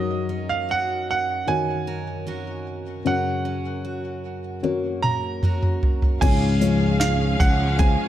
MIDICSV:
0, 0, Header, 1, 8, 480
1, 0, Start_track
1, 0, Key_signature, -5, "major"
1, 0, Tempo, 789474
1, 1858, Time_signature, 4, 2, 24, 8
1, 4913, End_track
2, 0, Start_track
2, 0, Title_t, "Grand piano"
2, 0, Program_c, 0, 0
2, 0, Note_on_c, 0, 75, 80
2, 301, Note_on_c, 0, 77, 73
2, 318, Note_off_c, 0, 75, 0
2, 411, Note_off_c, 0, 77, 0
2, 432, Note_on_c, 0, 78, 77
2, 649, Note_off_c, 0, 78, 0
2, 672, Note_on_c, 0, 78, 72
2, 900, Note_on_c, 0, 80, 72
2, 912, Note_off_c, 0, 78, 0
2, 1867, Note_on_c, 0, 78, 64
2, 1888, Note_off_c, 0, 80, 0
2, 3055, Note_on_c, 0, 82, 75
2, 3278, Note_off_c, 0, 78, 0
2, 3752, Note_off_c, 0, 82, 0
2, 3776, Note_on_c, 0, 80, 79
2, 4255, Note_on_c, 0, 77, 83
2, 4272, Note_off_c, 0, 80, 0
2, 4499, Note_on_c, 0, 78, 81
2, 4504, Note_off_c, 0, 77, 0
2, 4738, Note_on_c, 0, 80, 80
2, 4745, Note_off_c, 0, 78, 0
2, 4913, Note_off_c, 0, 80, 0
2, 4913, End_track
3, 0, Start_track
3, 0, Title_t, "Violin section"
3, 0, Program_c, 1, 48
3, 3783, Note_on_c, 1, 77, 87
3, 4913, Note_off_c, 1, 77, 0
3, 4913, End_track
4, 0, Start_track
4, 0, Title_t, "Felt piano"
4, 0, Program_c, 2, 0
4, 0, Note_on_c, 2, 42, 50
4, 0, Note_on_c, 2, 54, 52
4, 0, Note_on_c, 2, 63, 55
4, 0, Note_on_c, 2, 66, 55
4, 0, Note_on_c, 2, 70, 52
4, 0, Note_on_c, 2, 73, 65
4, 45, Control_c, 2, 64, 127
4, 845, Note_off_c, 2, 63, 0
4, 847, Note_off_c, 2, 66, 0
4, 849, Note_off_c, 2, 70, 0
4, 850, Note_off_c, 2, 73, 0
4, 889, Note_on_c, 2, 63, 56
4, 894, Note_on_c, 2, 66, 49
4, 896, Note_on_c, 2, 70, 47
4, 899, Note_on_c, 2, 73, 60
4, 1806, Note_off_c, 2, 63, 0
4, 1808, Note_off_c, 2, 66, 0
4, 1809, Note_off_c, 2, 70, 0
4, 1810, Note_off_c, 2, 73, 0
4, 1830, Note_off_c, 2, 42, 0
4, 1832, Note_off_c, 2, 54, 0
4, 1853, Note_on_c, 2, 61, 59
4, 1853, Note_on_c, 2, 66, 54
4, 1855, Note_on_c, 2, 42, 51
4, 1855, Note_on_c, 2, 49, 49
4, 1857, Note_on_c, 2, 70, 57
4, 1862, Note_on_c, 2, 73, 64
4, 1866, Control_c, 2, 64, 0
4, 1980, Control_c, 2, 64, 127
4, 2767, Note_off_c, 2, 61, 0
4, 2768, Note_off_c, 2, 66, 0
4, 2769, Note_off_c, 2, 70, 0
4, 2772, Note_off_c, 2, 73, 0
4, 2813, Note_on_c, 2, 61, 63
4, 2815, Note_on_c, 2, 66, 63
4, 2817, Note_on_c, 2, 70, 59
4, 2821, Note_on_c, 2, 73, 70
4, 3727, Note_off_c, 2, 61, 0
4, 3729, Note_off_c, 2, 66, 0
4, 3730, Note_off_c, 2, 70, 0
4, 3732, Note_off_c, 2, 73, 0
4, 3752, Note_off_c, 2, 42, 0
4, 3752, Note_off_c, 2, 49, 0
4, 3776, Note_on_c, 2, 56, 72
4, 3780, Note_on_c, 2, 61, 70
4, 3780, Note_on_c, 2, 65, 70
4, 3781, Note_on_c, 2, 44, 66
4, 3782, Note_on_c, 2, 68, 70
4, 3787, Control_c, 2, 64, 0
4, 3787, Note_on_c, 2, 73, 82
4, 3901, Control_c, 2, 64, 127
4, 4000, Note_off_c, 2, 56, 0
4, 4005, Note_off_c, 2, 61, 0
4, 4007, Note_off_c, 2, 65, 0
4, 4008, Note_off_c, 2, 68, 0
4, 4009, Note_on_c, 2, 56, 60
4, 4010, Note_off_c, 2, 73, 0
4, 4014, Note_on_c, 2, 61, 59
4, 4015, Note_on_c, 2, 53, 61
4, 4018, Note_on_c, 2, 68, 57
4, 4022, Note_on_c, 2, 73, 74
4, 4475, Note_off_c, 2, 44, 0
4, 4698, Note_off_c, 2, 56, 0
4, 4700, Note_off_c, 2, 61, 0
4, 4701, Note_off_c, 2, 53, 0
4, 4702, Note_off_c, 2, 68, 0
4, 4704, Note_off_c, 2, 73, 0
4, 4730, Note_on_c, 2, 56, 67
4, 4732, Note_on_c, 2, 61, 61
4, 4732, Note_on_c, 2, 65, 68
4, 4737, Note_on_c, 2, 68, 61
4, 4737, Note_on_c, 2, 72, 72
4, 4913, Note_off_c, 2, 56, 0
4, 4913, Note_off_c, 2, 61, 0
4, 4913, Note_off_c, 2, 65, 0
4, 4913, Note_off_c, 2, 68, 0
4, 4913, Note_off_c, 2, 72, 0
4, 4913, End_track
5, 0, Start_track
5, 0, Title_t, "Steel-string acoustic guitar"
5, 0, Program_c, 3, 25
5, 0, Note_on_c, 3, 51, 52
5, 0, Note_on_c, 3, 54, 61
5, 0, Note_on_c, 3, 70, 55
5, 177, Note_on_c, 3, 61, 48
5, 195, Note_off_c, 3, 51, 0
5, 418, Note_on_c, 3, 66, 42
5, 897, Note_on_c, 3, 51, 52
5, 1136, Note_off_c, 3, 70, 0
5, 1139, Note_on_c, 3, 70, 52
5, 1375, Note_off_c, 3, 61, 0
5, 1378, Note_off_c, 3, 66, 0
5, 1378, Note_on_c, 3, 61, 46
5, 1381, Note_on_c, 3, 66, 46
5, 1383, Note_off_c, 3, 70, 0
5, 1385, Note_on_c, 3, 70, 58
5, 1856, Note_off_c, 3, 54, 0
5, 1859, Note_on_c, 3, 54, 61
5, 1861, Note_off_c, 3, 70, 0
5, 1863, Note_on_c, 3, 70, 55
5, 1906, Note_off_c, 3, 51, 0
5, 2095, Note_off_c, 3, 61, 0
5, 2098, Note_on_c, 3, 61, 46
5, 2336, Note_off_c, 3, 66, 0
5, 2338, Note_on_c, 3, 66, 44
5, 2818, Note_on_c, 3, 58, 50
5, 3054, Note_off_c, 3, 70, 0
5, 3061, Note_on_c, 3, 70, 50
5, 3298, Note_off_c, 3, 66, 0
5, 3300, Note_off_c, 3, 70, 0
5, 3302, Note_off_c, 3, 61, 0
5, 3305, Note_on_c, 3, 61, 48
5, 3308, Note_on_c, 3, 66, 51
5, 3312, Note_on_c, 3, 70, 54
5, 3778, Note_off_c, 3, 54, 0
5, 3826, Note_off_c, 3, 58, 0
5, 3831, Note_off_c, 3, 66, 0
5, 3833, Note_off_c, 3, 70, 0
5, 4017, Note_off_c, 3, 61, 0
5, 4019, Note_on_c, 3, 61, 57
5, 4028, Note_on_c, 3, 68, 70
5, 4250, Note_off_c, 3, 61, 0
5, 4738, Note_on_c, 3, 61, 59
5, 4741, Note_on_c, 3, 65, 59
5, 4743, Note_off_c, 3, 68, 0
5, 4746, Note_on_c, 3, 68, 66
5, 4913, Note_off_c, 3, 61, 0
5, 4913, Note_off_c, 3, 65, 0
5, 4913, Note_off_c, 3, 68, 0
5, 4913, End_track
6, 0, Start_track
6, 0, Title_t, "String section"
6, 0, Program_c, 4, 48
6, 3794, Note_on_c, 4, 56, 70
6, 3795, Note_on_c, 4, 68, 80
6, 3797, Note_on_c, 4, 53, 76
6, 3798, Note_on_c, 4, 61, 70
6, 4913, Note_off_c, 4, 53, 0
6, 4913, Note_off_c, 4, 56, 0
6, 4913, Note_off_c, 4, 61, 0
6, 4913, Note_off_c, 4, 68, 0
6, 4913, End_track
7, 0, Start_track
7, 0, Title_t, "Fretless electric bass"
7, 0, Program_c, 5, 35
7, 3782, Note_on_c, 5, 37, 96
7, 4476, Note_off_c, 5, 37, 0
7, 4501, Note_on_c, 5, 37, 80
7, 4835, Note_off_c, 5, 37, 0
7, 4913, End_track
8, 0, Start_track
8, 0, Title_t, "Drums"
8, 2821, Note_on_c, 9, 48, 43
8, 2881, Note_off_c, 9, 48, 0
8, 3063, Note_on_c, 9, 47, 55
8, 3124, Note_off_c, 9, 47, 0
8, 3300, Note_on_c, 9, 45, 70
8, 3361, Note_off_c, 9, 45, 0
8, 3421, Note_on_c, 9, 45, 57
8, 3481, Note_off_c, 9, 45, 0
8, 3543, Note_on_c, 9, 43, 74
8, 3604, Note_off_c, 9, 43, 0
8, 3661, Note_on_c, 9, 43, 70
8, 3722, Note_off_c, 9, 43, 0
8, 3781, Note_on_c, 9, 36, 109
8, 3783, Note_on_c, 9, 49, 89
8, 3784, Note_on_c, 9, 46, 95
8, 3842, Note_off_c, 9, 36, 0
8, 3844, Note_off_c, 9, 49, 0
8, 3845, Note_off_c, 9, 46, 0
8, 4022, Note_on_c, 9, 46, 75
8, 4082, Note_off_c, 9, 46, 0
8, 4261, Note_on_c, 9, 38, 112
8, 4261, Note_on_c, 9, 46, 73
8, 4322, Note_off_c, 9, 38, 0
8, 4322, Note_off_c, 9, 46, 0
8, 4501, Note_on_c, 9, 36, 83
8, 4502, Note_on_c, 9, 46, 74
8, 4562, Note_off_c, 9, 36, 0
8, 4563, Note_off_c, 9, 46, 0
8, 4735, Note_on_c, 9, 46, 67
8, 4738, Note_on_c, 9, 36, 85
8, 4796, Note_off_c, 9, 46, 0
8, 4799, Note_off_c, 9, 36, 0
8, 4913, End_track
0, 0, End_of_file